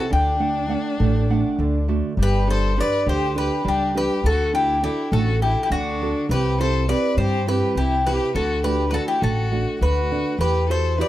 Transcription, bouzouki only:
0.00 0.12 A4 medium
0.13 1.85 G4 medium
2.23 2.50 B4 medium
2.50 2.79 C5 medium
2.81 3.06 D5 loud
3.09 3.35 C5 medium
3.38 3.67 B4 medium
3.68 3.94 G4 medium
3.98 4.24 B4 medium
4.26 4.53 A4 medium
4.55 4.82 G4 medium
4.84 5.11 G4 medium
5.13 5.40 A4 medium
5.42 5.62 G4 medium
5.63 5.71 G4 medium
5.72 6.26 F#4 medium
6.31 6.58 B4 medium
6.61 6.88 C5 medium
6.89 7.16 D5 medium
7.18 7.45 C5 medium
7.49 7.78 B4 medium
7.77 8.08 G4 medium
8.07 8.34 B4 medium
8.36 8.63 A4 medium
8.64 8.89 B4 medium
8.91 9.08 A4 medium
8.91 8.94 B4 medium
9.08 9.23 G4 medium
9.23 9.78 A4 medium
9.82 10.37 B4 medium
10.41 10.68 B4 medium
10.71 10.98 C5 medium
11.01 11.08 D5 medium

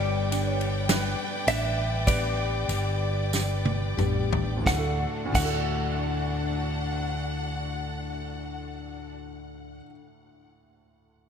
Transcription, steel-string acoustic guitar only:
0.00 2.06 G2 medium
0.00 3.26 D3 medium
0.00 2.05 G3 medium
0.00 2.06 B3 medium
0.00 2.08 D4 medium
0.00 2.07 G4 medium
2.06 3.98 G3 medium
2.06 3.98 B3 medium
2.06 3.98 D4 medium
2.06 3.96 G4 medium
3.97 4.63 G3 medium
3.97 4.66 B3 medium
3.97 4.66 D4 medium
3.97 4.66 G4 medium
4.64 5.32 D3 medium
4.64 5.35 A3 medium
4.69 5.37 D4 medium
4.69 5.39 F#4 loud
5.32 9.81 D3 medium
5.32 9.85 A3 medium
5.37 9.86 D4 medium
5.37 9.89 F#4 medium

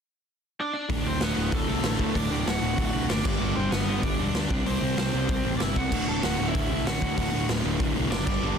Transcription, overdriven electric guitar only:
0.60 0.72 D4 medium
0.60 0.73 D5 medium
0.73 1.03 D4 medium
0.73 1.06 D5 medium
1.07 1.21 C4 medium
1.07 1.22 C5 medium
1.21 1.50 B3 medium
1.21 1.54 B4 medium
1.54 2.12 A3 medium
1.54 2.18 A4 medium
2.16 2.44 D4 medium
2.16 2.47 D5 medium
2.49 3.06 F#4 medium
2.49 3.10 F#5 medium
3.11 3.24 D4 medium
3.11 3.24 D5 medium
3.25 3.54 D4 medium
3.25 3.55 D5 loud
3.56 3.70 C4 medium
3.56 3.72 C5 medium
3.71 4.00 B3 medium
3.71 4.03 B4 medium
4.03 4.62 D4 medium
4.03 4.67 D5 medium
4.67 4.96 C4 medium
4.67 4.98 C5 loud
4.99 5.53 C4 medium
4.99 5.53 C5 loud
5.58 5.61 D5 medium
5.62 5.76 E4 medium
5.62 5.77 E5 loud
5.77 6.06 F#4 medium
5.77 6.09 F#5 loud
6.09 6.23 A4 medium
6.09 6.23 A5 loud
6.23 6.46 F#4 medium
6.23 6.47 F#5 loud
6.48 6.84 E4 medium
6.48 6.87 E5 medium
6.87 7.16 F#4 medium
6.87 7.16 F#5 medium
7.17 7.47 F#4 medium
7.17 7.46 F#5 medium
8.11 8.26 D4 medium
8.11 8.25 D5 medium
8.26 8.56 D4 medium
8.26 8.58 D5 loud

